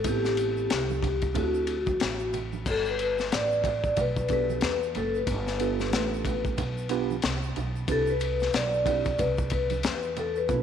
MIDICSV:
0, 0, Header, 1, 5, 480
1, 0, Start_track
1, 0, Key_signature, 1, "major"
1, 0, Tempo, 652174
1, 40, Time_signature, 4, 2, 24, 8
1, 7822, End_track
2, 0, Start_track
2, 0, Title_t, "Vibraphone"
2, 0, Program_c, 0, 11
2, 64, Note_on_c, 0, 67, 89
2, 1027, Note_on_c, 0, 66, 70
2, 1041, Note_off_c, 0, 67, 0
2, 1705, Note_off_c, 0, 66, 0
2, 1990, Note_on_c, 0, 69, 87
2, 2120, Note_off_c, 0, 69, 0
2, 2135, Note_on_c, 0, 71, 84
2, 2220, Note_off_c, 0, 71, 0
2, 2234, Note_on_c, 0, 71, 83
2, 2461, Note_on_c, 0, 74, 92
2, 2464, Note_off_c, 0, 71, 0
2, 2945, Note_off_c, 0, 74, 0
2, 2949, Note_on_c, 0, 71, 91
2, 3178, Note_off_c, 0, 71, 0
2, 3187, Note_on_c, 0, 71, 94
2, 3659, Note_on_c, 0, 69, 79
2, 3668, Note_off_c, 0, 71, 0
2, 3794, Note_off_c, 0, 69, 0
2, 3802, Note_on_c, 0, 71, 78
2, 4722, Note_off_c, 0, 71, 0
2, 5826, Note_on_c, 0, 69, 95
2, 5958, Note_off_c, 0, 69, 0
2, 5963, Note_on_c, 0, 71, 83
2, 6054, Note_off_c, 0, 71, 0
2, 6063, Note_on_c, 0, 71, 88
2, 6299, Note_off_c, 0, 71, 0
2, 6300, Note_on_c, 0, 74, 93
2, 6767, Note_on_c, 0, 71, 92
2, 6785, Note_off_c, 0, 74, 0
2, 6874, Note_off_c, 0, 71, 0
2, 7013, Note_on_c, 0, 71, 92
2, 7500, Note_on_c, 0, 69, 77
2, 7501, Note_off_c, 0, 71, 0
2, 7635, Note_off_c, 0, 69, 0
2, 7638, Note_on_c, 0, 71, 84
2, 7822, Note_off_c, 0, 71, 0
2, 7822, End_track
3, 0, Start_track
3, 0, Title_t, "Tine electric piano"
3, 0, Program_c, 1, 4
3, 33, Note_on_c, 1, 59, 64
3, 39, Note_on_c, 1, 60, 58
3, 41, Note_on_c, 1, 64, 62
3, 44, Note_on_c, 1, 67, 59
3, 51, Note_on_c, 1, 69, 73
3, 717, Note_off_c, 1, 59, 0
3, 720, Note_off_c, 1, 60, 0
3, 721, Note_off_c, 1, 64, 0
3, 723, Note_off_c, 1, 67, 0
3, 726, Note_off_c, 1, 69, 0
3, 990, Note_on_c, 1, 60, 57
3, 994, Note_on_c, 1, 62, 58
3, 1000, Note_on_c, 1, 64, 55
3, 1003, Note_on_c, 1, 66, 55
3, 1008, Note_on_c, 1, 69, 65
3, 1292, Note_off_c, 1, 60, 0
3, 1294, Note_off_c, 1, 62, 0
3, 1297, Note_off_c, 1, 64, 0
3, 1298, Note_off_c, 1, 66, 0
3, 1301, Note_off_c, 1, 69, 0
3, 3156, Note_on_c, 1, 59, 55
3, 3161, Note_on_c, 1, 62, 52
3, 3165, Note_on_c, 1, 66, 52
3, 3168, Note_on_c, 1, 67, 50
3, 3174, Note_on_c, 1, 69, 61
3, 3511, Note_off_c, 1, 59, 0
3, 3513, Note_off_c, 1, 62, 0
3, 3515, Note_off_c, 1, 66, 0
3, 3517, Note_off_c, 1, 67, 0
3, 3520, Note_off_c, 1, 69, 0
3, 4115, Note_on_c, 1, 59, 66
3, 4121, Note_on_c, 1, 62, 61
3, 4126, Note_on_c, 1, 65, 57
3, 4129, Note_on_c, 1, 67, 59
3, 4130, Note_on_c, 1, 69, 74
3, 4798, Note_off_c, 1, 59, 0
3, 4801, Note_off_c, 1, 62, 0
3, 4804, Note_off_c, 1, 65, 0
3, 4805, Note_off_c, 1, 67, 0
3, 4806, Note_off_c, 1, 69, 0
3, 5076, Note_on_c, 1, 59, 85
3, 5079, Note_on_c, 1, 62, 76
3, 5084, Note_on_c, 1, 65, 76
3, 5086, Note_on_c, 1, 67, 79
3, 5088, Note_on_c, 1, 71, 93
3, 5259, Note_off_c, 1, 59, 0
3, 5260, Note_off_c, 1, 62, 0
3, 5263, Note_off_c, 1, 65, 0
3, 5264, Note_off_c, 1, 67, 0
3, 5265, Note_off_c, 1, 71, 0
3, 5798, Note_on_c, 1, 60, 61
3, 5798, Note_on_c, 1, 62, 57
3, 5804, Note_on_c, 1, 64, 59
3, 5807, Note_on_c, 1, 67, 58
3, 5811, Note_on_c, 1, 71, 67
3, 5980, Note_off_c, 1, 60, 0
3, 5980, Note_off_c, 1, 62, 0
3, 5983, Note_off_c, 1, 64, 0
3, 5984, Note_off_c, 1, 67, 0
3, 5986, Note_off_c, 1, 71, 0
3, 6510, Note_on_c, 1, 60, 64
3, 6517, Note_on_c, 1, 62, 58
3, 6518, Note_on_c, 1, 64, 58
3, 6526, Note_on_c, 1, 67, 58
3, 6529, Note_on_c, 1, 71, 67
3, 6696, Note_off_c, 1, 60, 0
3, 6699, Note_off_c, 1, 62, 0
3, 6700, Note_off_c, 1, 64, 0
3, 6704, Note_off_c, 1, 67, 0
3, 6705, Note_off_c, 1, 71, 0
3, 7720, Note_on_c, 1, 59, 74
3, 7723, Note_on_c, 1, 60, 53
3, 7724, Note_on_c, 1, 65, 66
3, 7733, Note_on_c, 1, 69, 66
3, 7734, Note_on_c, 1, 71, 82
3, 7770, Note_on_c, 1, 62, 67
3, 7778, Note_off_c, 1, 60, 0
3, 7822, Note_off_c, 1, 59, 0
3, 7822, Note_off_c, 1, 62, 0
3, 7822, Note_off_c, 1, 65, 0
3, 7822, Note_off_c, 1, 69, 0
3, 7822, Note_off_c, 1, 71, 0
3, 7822, End_track
4, 0, Start_track
4, 0, Title_t, "Upright bass"
4, 0, Program_c, 2, 32
4, 37, Note_on_c, 2, 33, 97
4, 495, Note_off_c, 2, 33, 0
4, 527, Note_on_c, 2, 36, 91
4, 980, Note_off_c, 2, 36, 0
4, 1005, Note_on_c, 2, 38, 91
4, 1459, Note_off_c, 2, 38, 0
4, 1484, Note_on_c, 2, 33, 95
4, 1939, Note_off_c, 2, 33, 0
4, 1961, Note_on_c, 2, 31, 90
4, 2417, Note_off_c, 2, 31, 0
4, 2445, Note_on_c, 2, 33, 82
4, 2899, Note_off_c, 2, 33, 0
4, 2930, Note_on_c, 2, 35, 88
4, 3381, Note_off_c, 2, 35, 0
4, 3404, Note_on_c, 2, 40, 87
4, 3630, Note_off_c, 2, 40, 0
4, 3644, Note_on_c, 2, 30, 91
4, 3871, Note_off_c, 2, 30, 0
4, 3881, Note_on_c, 2, 31, 96
4, 4369, Note_off_c, 2, 31, 0
4, 4369, Note_on_c, 2, 33, 95
4, 4821, Note_off_c, 2, 33, 0
4, 4848, Note_on_c, 2, 35, 88
4, 5300, Note_off_c, 2, 35, 0
4, 5324, Note_on_c, 2, 36, 84
4, 5550, Note_off_c, 2, 36, 0
4, 5566, Note_on_c, 2, 35, 87
4, 5792, Note_off_c, 2, 35, 0
4, 5803, Note_on_c, 2, 36, 100
4, 6258, Note_off_c, 2, 36, 0
4, 6282, Note_on_c, 2, 35, 89
4, 6738, Note_off_c, 2, 35, 0
4, 6769, Note_on_c, 2, 36, 90
4, 7221, Note_off_c, 2, 36, 0
4, 7243, Note_on_c, 2, 40, 87
4, 7698, Note_off_c, 2, 40, 0
4, 7723, Note_on_c, 2, 35, 100
4, 7822, Note_off_c, 2, 35, 0
4, 7822, End_track
5, 0, Start_track
5, 0, Title_t, "Drums"
5, 31, Note_on_c, 9, 51, 75
5, 34, Note_on_c, 9, 36, 102
5, 44, Note_on_c, 9, 82, 67
5, 105, Note_off_c, 9, 51, 0
5, 107, Note_off_c, 9, 36, 0
5, 118, Note_off_c, 9, 82, 0
5, 183, Note_on_c, 9, 38, 36
5, 183, Note_on_c, 9, 82, 44
5, 256, Note_off_c, 9, 38, 0
5, 256, Note_off_c, 9, 82, 0
5, 273, Note_on_c, 9, 51, 55
5, 284, Note_on_c, 9, 82, 48
5, 347, Note_off_c, 9, 51, 0
5, 358, Note_off_c, 9, 82, 0
5, 420, Note_on_c, 9, 82, 40
5, 494, Note_off_c, 9, 82, 0
5, 516, Note_on_c, 9, 44, 48
5, 516, Note_on_c, 9, 51, 64
5, 517, Note_on_c, 9, 82, 61
5, 520, Note_on_c, 9, 38, 96
5, 589, Note_off_c, 9, 44, 0
5, 589, Note_off_c, 9, 51, 0
5, 591, Note_off_c, 9, 82, 0
5, 594, Note_off_c, 9, 38, 0
5, 662, Note_on_c, 9, 63, 58
5, 662, Note_on_c, 9, 82, 39
5, 735, Note_off_c, 9, 63, 0
5, 735, Note_off_c, 9, 82, 0
5, 755, Note_on_c, 9, 36, 80
5, 757, Note_on_c, 9, 63, 41
5, 757, Note_on_c, 9, 64, 58
5, 757, Note_on_c, 9, 82, 41
5, 762, Note_on_c, 9, 51, 60
5, 828, Note_off_c, 9, 36, 0
5, 831, Note_off_c, 9, 63, 0
5, 831, Note_off_c, 9, 64, 0
5, 831, Note_off_c, 9, 82, 0
5, 836, Note_off_c, 9, 51, 0
5, 895, Note_on_c, 9, 51, 43
5, 899, Note_on_c, 9, 82, 40
5, 902, Note_on_c, 9, 36, 87
5, 968, Note_off_c, 9, 51, 0
5, 973, Note_off_c, 9, 82, 0
5, 975, Note_off_c, 9, 36, 0
5, 991, Note_on_c, 9, 63, 40
5, 991, Note_on_c, 9, 64, 59
5, 991, Note_on_c, 9, 82, 57
5, 995, Note_on_c, 9, 51, 58
5, 1001, Note_on_c, 9, 36, 82
5, 1064, Note_off_c, 9, 63, 0
5, 1064, Note_off_c, 9, 64, 0
5, 1064, Note_off_c, 9, 82, 0
5, 1069, Note_off_c, 9, 51, 0
5, 1075, Note_off_c, 9, 36, 0
5, 1136, Note_on_c, 9, 82, 48
5, 1210, Note_off_c, 9, 82, 0
5, 1229, Note_on_c, 9, 51, 54
5, 1230, Note_on_c, 9, 82, 47
5, 1302, Note_off_c, 9, 51, 0
5, 1304, Note_off_c, 9, 82, 0
5, 1372, Note_on_c, 9, 63, 58
5, 1372, Note_on_c, 9, 82, 42
5, 1376, Note_on_c, 9, 36, 81
5, 1445, Note_off_c, 9, 63, 0
5, 1445, Note_off_c, 9, 82, 0
5, 1450, Note_off_c, 9, 36, 0
5, 1471, Note_on_c, 9, 44, 45
5, 1471, Note_on_c, 9, 51, 61
5, 1473, Note_on_c, 9, 82, 56
5, 1482, Note_on_c, 9, 38, 112
5, 1545, Note_off_c, 9, 44, 0
5, 1545, Note_off_c, 9, 51, 0
5, 1547, Note_off_c, 9, 82, 0
5, 1555, Note_off_c, 9, 38, 0
5, 1615, Note_on_c, 9, 82, 44
5, 1688, Note_off_c, 9, 82, 0
5, 1718, Note_on_c, 9, 64, 57
5, 1718, Note_on_c, 9, 82, 43
5, 1720, Note_on_c, 9, 51, 46
5, 1791, Note_off_c, 9, 64, 0
5, 1791, Note_off_c, 9, 82, 0
5, 1793, Note_off_c, 9, 51, 0
5, 1859, Note_on_c, 9, 63, 50
5, 1859, Note_on_c, 9, 82, 35
5, 1932, Note_off_c, 9, 63, 0
5, 1932, Note_off_c, 9, 82, 0
5, 1958, Note_on_c, 9, 36, 102
5, 1958, Note_on_c, 9, 82, 66
5, 1960, Note_on_c, 9, 49, 86
5, 2032, Note_off_c, 9, 36, 0
5, 2032, Note_off_c, 9, 82, 0
5, 2034, Note_off_c, 9, 49, 0
5, 2099, Note_on_c, 9, 82, 43
5, 2172, Note_off_c, 9, 82, 0
5, 2201, Note_on_c, 9, 51, 58
5, 2203, Note_on_c, 9, 82, 45
5, 2274, Note_off_c, 9, 51, 0
5, 2277, Note_off_c, 9, 82, 0
5, 2343, Note_on_c, 9, 82, 39
5, 2353, Note_on_c, 9, 38, 34
5, 2416, Note_off_c, 9, 82, 0
5, 2426, Note_off_c, 9, 38, 0
5, 2444, Note_on_c, 9, 44, 45
5, 2444, Note_on_c, 9, 51, 65
5, 2447, Note_on_c, 9, 82, 60
5, 2448, Note_on_c, 9, 38, 104
5, 2517, Note_off_c, 9, 44, 0
5, 2517, Note_off_c, 9, 51, 0
5, 2520, Note_off_c, 9, 82, 0
5, 2522, Note_off_c, 9, 38, 0
5, 2588, Note_on_c, 9, 82, 38
5, 2661, Note_off_c, 9, 82, 0
5, 2677, Note_on_c, 9, 36, 87
5, 2682, Note_on_c, 9, 64, 61
5, 2682, Note_on_c, 9, 82, 41
5, 2684, Note_on_c, 9, 51, 64
5, 2751, Note_off_c, 9, 36, 0
5, 2756, Note_off_c, 9, 64, 0
5, 2756, Note_off_c, 9, 82, 0
5, 2757, Note_off_c, 9, 51, 0
5, 2824, Note_on_c, 9, 36, 81
5, 2824, Note_on_c, 9, 82, 41
5, 2898, Note_off_c, 9, 36, 0
5, 2898, Note_off_c, 9, 82, 0
5, 2919, Note_on_c, 9, 51, 59
5, 2919, Note_on_c, 9, 64, 56
5, 2919, Note_on_c, 9, 82, 55
5, 2925, Note_on_c, 9, 36, 84
5, 2993, Note_off_c, 9, 51, 0
5, 2993, Note_off_c, 9, 64, 0
5, 2993, Note_off_c, 9, 82, 0
5, 2998, Note_off_c, 9, 36, 0
5, 3066, Note_on_c, 9, 36, 87
5, 3067, Note_on_c, 9, 82, 50
5, 3139, Note_off_c, 9, 36, 0
5, 3140, Note_off_c, 9, 82, 0
5, 3153, Note_on_c, 9, 51, 52
5, 3161, Note_on_c, 9, 82, 42
5, 3164, Note_on_c, 9, 36, 88
5, 3227, Note_off_c, 9, 51, 0
5, 3235, Note_off_c, 9, 82, 0
5, 3238, Note_off_c, 9, 36, 0
5, 3311, Note_on_c, 9, 63, 56
5, 3311, Note_on_c, 9, 82, 42
5, 3384, Note_off_c, 9, 63, 0
5, 3384, Note_off_c, 9, 82, 0
5, 3392, Note_on_c, 9, 44, 43
5, 3392, Note_on_c, 9, 51, 61
5, 3403, Note_on_c, 9, 38, 111
5, 3411, Note_on_c, 9, 82, 56
5, 3466, Note_off_c, 9, 44, 0
5, 3466, Note_off_c, 9, 51, 0
5, 3476, Note_off_c, 9, 38, 0
5, 3485, Note_off_c, 9, 82, 0
5, 3553, Note_on_c, 9, 82, 46
5, 3626, Note_off_c, 9, 82, 0
5, 3641, Note_on_c, 9, 51, 45
5, 3654, Note_on_c, 9, 64, 59
5, 3654, Note_on_c, 9, 82, 42
5, 3714, Note_off_c, 9, 51, 0
5, 3727, Note_off_c, 9, 64, 0
5, 3727, Note_off_c, 9, 82, 0
5, 3788, Note_on_c, 9, 82, 37
5, 3862, Note_off_c, 9, 82, 0
5, 3878, Note_on_c, 9, 51, 72
5, 3879, Note_on_c, 9, 36, 106
5, 3884, Note_on_c, 9, 82, 64
5, 3952, Note_off_c, 9, 36, 0
5, 3952, Note_off_c, 9, 51, 0
5, 3958, Note_off_c, 9, 82, 0
5, 4028, Note_on_c, 9, 38, 36
5, 4030, Note_on_c, 9, 82, 44
5, 4101, Note_off_c, 9, 38, 0
5, 4104, Note_off_c, 9, 82, 0
5, 4118, Note_on_c, 9, 51, 54
5, 4130, Note_on_c, 9, 82, 47
5, 4192, Note_off_c, 9, 51, 0
5, 4203, Note_off_c, 9, 82, 0
5, 4266, Note_on_c, 9, 82, 41
5, 4270, Note_on_c, 9, 38, 35
5, 4340, Note_off_c, 9, 82, 0
5, 4343, Note_off_c, 9, 38, 0
5, 4363, Note_on_c, 9, 44, 47
5, 4363, Note_on_c, 9, 51, 63
5, 4365, Note_on_c, 9, 82, 60
5, 4367, Note_on_c, 9, 38, 97
5, 4436, Note_off_c, 9, 44, 0
5, 4436, Note_off_c, 9, 51, 0
5, 4438, Note_off_c, 9, 82, 0
5, 4441, Note_off_c, 9, 38, 0
5, 4514, Note_on_c, 9, 82, 38
5, 4588, Note_off_c, 9, 82, 0
5, 4598, Note_on_c, 9, 36, 81
5, 4601, Note_on_c, 9, 51, 61
5, 4611, Note_on_c, 9, 64, 59
5, 4611, Note_on_c, 9, 82, 44
5, 4671, Note_off_c, 9, 36, 0
5, 4675, Note_off_c, 9, 51, 0
5, 4684, Note_off_c, 9, 64, 0
5, 4684, Note_off_c, 9, 82, 0
5, 4745, Note_on_c, 9, 36, 87
5, 4748, Note_on_c, 9, 82, 39
5, 4819, Note_off_c, 9, 36, 0
5, 4822, Note_off_c, 9, 82, 0
5, 4840, Note_on_c, 9, 64, 59
5, 4840, Note_on_c, 9, 82, 57
5, 4842, Note_on_c, 9, 51, 60
5, 4845, Note_on_c, 9, 36, 85
5, 4914, Note_off_c, 9, 64, 0
5, 4914, Note_off_c, 9, 82, 0
5, 4916, Note_off_c, 9, 51, 0
5, 4919, Note_off_c, 9, 36, 0
5, 4988, Note_on_c, 9, 82, 48
5, 5061, Note_off_c, 9, 82, 0
5, 5072, Note_on_c, 9, 51, 56
5, 5082, Note_on_c, 9, 82, 43
5, 5146, Note_off_c, 9, 51, 0
5, 5156, Note_off_c, 9, 82, 0
5, 5230, Note_on_c, 9, 63, 58
5, 5230, Note_on_c, 9, 82, 41
5, 5303, Note_off_c, 9, 63, 0
5, 5303, Note_off_c, 9, 82, 0
5, 5315, Note_on_c, 9, 44, 43
5, 5315, Note_on_c, 9, 51, 62
5, 5326, Note_on_c, 9, 38, 115
5, 5326, Note_on_c, 9, 82, 57
5, 5389, Note_off_c, 9, 44, 0
5, 5389, Note_off_c, 9, 51, 0
5, 5399, Note_off_c, 9, 38, 0
5, 5400, Note_off_c, 9, 82, 0
5, 5466, Note_on_c, 9, 82, 45
5, 5540, Note_off_c, 9, 82, 0
5, 5564, Note_on_c, 9, 51, 46
5, 5570, Note_on_c, 9, 64, 56
5, 5570, Note_on_c, 9, 82, 42
5, 5638, Note_off_c, 9, 51, 0
5, 5644, Note_off_c, 9, 64, 0
5, 5644, Note_off_c, 9, 82, 0
5, 5709, Note_on_c, 9, 82, 39
5, 5783, Note_off_c, 9, 82, 0
5, 5799, Note_on_c, 9, 36, 110
5, 5800, Note_on_c, 9, 51, 71
5, 5800, Note_on_c, 9, 82, 68
5, 5873, Note_off_c, 9, 36, 0
5, 5874, Note_off_c, 9, 51, 0
5, 5874, Note_off_c, 9, 82, 0
5, 5937, Note_on_c, 9, 82, 45
5, 6011, Note_off_c, 9, 82, 0
5, 6034, Note_on_c, 9, 82, 48
5, 6041, Note_on_c, 9, 51, 58
5, 6107, Note_off_c, 9, 82, 0
5, 6115, Note_off_c, 9, 51, 0
5, 6180, Note_on_c, 9, 82, 38
5, 6197, Note_on_c, 9, 38, 33
5, 6254, Note_off_c, 9, 82, 0
5, 6271, Note_off_c, 9, 38, 0
5, 6277, Note_on_c, 9, 82, 57
5, 6284, Note_on_c, 9, 44, 45
5, 6284, Note_on_c, 9, 51, 60
5, 6289, Note_on_c, 9, 38, 101
5, 6351, Note_off_c, 9, 82, 0
5, 6358, Note_off_c, 9, 44, 0
5, 6358, Note_off_c, 9, 51, 0
5, 6362, Note_off_c, 9, 38, 0
5, 6429, Note_on_c, 9, 82, 39
5, 6502, Note_off_c, 9, 82, 0
5, 6519, Note_on_c, 9, 36, 82
5, 6524, Note_on_c, 9, 51, 65
5, 6524, Note_on_c, 9, 64, 61
5, 6524, Note_on_c, 9, 82, 45
5, 6593, Note_off_c, 9, 36, 0
5, 6597, Note_off_c, 9, 64, 0
5, 6597, Note_off_c, 9, 82, 0
5, 6598, Note_off_c, 9, 51, 0
5, 6658, Note_on_c, 9, 82, 42
5, 6666, Note_on_c, 9, 51, 42
5, 6667, Note_on_c, 9, 36, 85
5, 6732, Note_off_c, 9, 82, 0
5, 6740, Note_off_c, 9, 51, 0
5, 6741, Note_off_c, 9, 36, 0
5, 6760, Note_on_c, 9, 64, 58
5, 6760, Note_on_c, 9, 82, 59
5, 6764, Note_on_c, 9, 51, 62
5, 6766, Note_on_c, 9, 36, 85
5, 6834, Note_off_c, 9, 64, 0
5, 6834, Note_off_c, 9, 82, 0
5, 6837, Note_off_c, 9, 51, 0
5, 6839, Note_off_c, 9, 36, 0
5, 6901, Note_on_c, 9, 82, 47
5, 6907, Note_on_c, 9, 36, 86
5, 6975, Note_off_c, 9, 82, 0
5, 6980, Note_off_c, 9, 36, 0
5, 6991, Note_on_c, 9, 51, 59
5, 6999, Note_on_c, 9, 82, 43
5, 7004, Note_on_c, 9, 36, 86
5, 7065, Note_off_c, 9, 51, 0
5, 7073, Note_off_c, 9, 82, 0
5, 7077, Note_off_c, 9, 36, 0
5, 7137, Note_on_c, 9, 51, 42
5, 7144, Note_on_c, 9, 63, 57
5, 7144, Note_on_c, 9, 82, 42
5, 7211, Note_off_c, 9, 51, 0
5, 7218, Note_off_c, 9, 63, 0
5, 7218, Note_off_c, 9, 82, 0
5, 7236, Note_on_c, 9, 44, 46
5, 7236, Note_on_c, 9, 51, 65
5, 7244, Note_on_c, 9, 82, 60
5, 7247, Note_on_c, 9, 38, 112
5, 7310, Note_off_c, 9, 44, 0
5, 7310, Note_off_c, 9, 51, 0
5, 7318, Note_off_c, 9, 82, 0
5, 7320, Note_off_c, 9, 38, 0
5, 7380, Note_on_c, 9, 82, 45
5, 7454, Note_off_c, 9, 82, 0
5, 7481, Note_on_c, 9, 51, 45
5, 7483, Note_on_c, 9, 64, 58
5, 7483, Note_on_c, 9, 82, 42
5, 7555, Note_off_c, 9, 51, 0
5, 7556, Note_off_c, 9, 64, 0
5, 7556, Note_off_c, 9, 82, 0
5, 7620, Note_on_c, 9, 82, 36
5, 7694, Note_off_c, 9, 82, 0
5, 7719, Note_on_c, 9, 82, 67
5, 7720, Note_on_c, 9, 36, 109
5, 7792, Note_off_c, 9, 82, 0
5, 7794, Note_off_c, 9, 36, 0
5, 7822, End_track
0, 0, End_of_file